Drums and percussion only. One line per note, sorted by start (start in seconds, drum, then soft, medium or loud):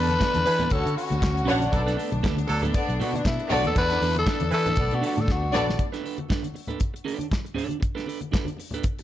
0.09 closed hi-hat soft
0.09 high conga medium
0.20 kick loud
0.20 snare loud
0.20 clap medium
0.20 muted conga soft
0.34 closed hi-hat medium
0.34 high conga medium
0.45 open hi-hat medium
0.45 muted conga soft
0.59 closed hi-hat soft
0.59 low conga medium
0.70 kick loud
0.70 closed hi-hat medium
0.70 muted conga soft
0.87 closed hi-hat medium
0.97 open hi-hat medium
0.97 muted conga soft
1.10 closed hi-hat soft
1.10 high conga medium
1.22 kick loud
1.22 snare loud
1.22 clap medium
1.37 closed hi-hat soft
1.46 open hi-hat medium
1.46 low conga medium
1.61 closed hi-hat soft
1.61 high conga medium
1.72 kick loud
1.72 closed hi-hat medium
1.72 muted conga soft
1.72 low conga medium
1.88 snare soft
1.88 closed hi-hat soft
1.97 open hi-hat medium
1.97 muted conga soft
2.12 closed hi-hat soft
2.12 high conga medium
2.23 kick loud
2.23 snare loud
2.23 clap medium
2.23 muted conga soft
2.37 closed hi-hat medium
2.37 high conga medium
2.48 open hi-hat medium
2.48 muted conga soft
2.62 closed hi-hat soft
2.62 low conga medium
2.73 kick loud
2.73 closed hi-hat medium
2.73 muted conga soft
2.90 closed hi-hat soft
3.01 open hi-hat medium
3.13 closed hi-hat soft
3.13 high conga medium
3.25 kick medium
3.25 snare loud
3.25 clap medium
3.25 muted conga soft
3.39 closed hi-hat soft
3.50 open hi-hat medium
3.50 muted conga soft
3.50 low conga medium
3.64 closed hi-hat soft
3.64 high conga medium
3.75 kick loud
3.75 closed hi-hat medium
3.75 muted conga soft
3.75 low conga medium
3.90 snare soft
3.90 closed hi-hat medium
4.01 open hi-hat medium
4.01 muted conga soft
4.14 closed hi-hat soft
4.14 high conga medium
4.27 kick loud
4.27 snare loud
4.27 clap loud
4.40 closed hi-hat medium
4.40 high conga medium
4.51 open hi-hat medium
4.51 muted conga soft
4.66 closed hi-hat soft
4.66 low conga medium
4.76 kick loud
4.76 closed hi-hat medium
4.91 closed hi-hat soft
5.03 open hi-hat medium
5.03 muted conga soft
5.17 closed hi-hat soft
5.17 high conga medium
5.28 kick loud
5.28 snare medium
5.28 muted conga soft
5.54 snare medium
5.54 muted conga soft
5.54 low conga medium
5.68 snare medium
5.68 high conga medium
5.79 kick loud
5.79 closed hi-hat soft
5.79 muted conga soft
5.94 snare soft
5.94 closed hi-hat soft
6.04 open hi-hat medium
6.04 muted conga soft
6.18 closed hi-hat soft
6.18 high conga medium
6.29 kick loud
6.29 snare loud
6.29 clap medium
6.29 muted conga soft
6.43 closed hi-hat soft
6.43 high conga medium
6.54 open hi-hat medium
6.54 muted conga soft
6.67 closed hi-hat soft
6.67 low conga medium
6.79 kick loud
6.79 closed hi-hat medium
6.79 muted conga soft
6.96 closed hi-hat soft
7.04 open hi-hat medium
7.04 muted conga soft
7.19 closed hi-hat soft
7.19 high conga medium
7.31 kick medium
7.31 snare medium
7.31 clap medium
7.46 closed hi-hat soft
7.55 open hi-hat medium
7.55 muted conga soft
7.55 low conga medium
7.69 closed hi-hat soft
7.69 high conga medium
7.80 kick loud
7.80 closed hi-hat soft
7.80 muted conga soft
7.98 snare soft
7.98 closed hi-hat soft
8.06 open hi-hat medium
8.06 muted conga soft
8.21 closed hi-hat soft
8.21 high conga medium
8.31 kick loud
8.31 snare loud
8.31 clap medium
8.31 muted conga soft
8.45 closed hi-hat soft
8.45 high conga medium
8.57 open hi-hat medium
8.57 muted conga soft
8.71 closed hi-hat soft
8.71 low conga medium
8.83 kick loud
8.83 closed hi-hat medium
8.83 muted conga soft
8.99 closed hi-hat soft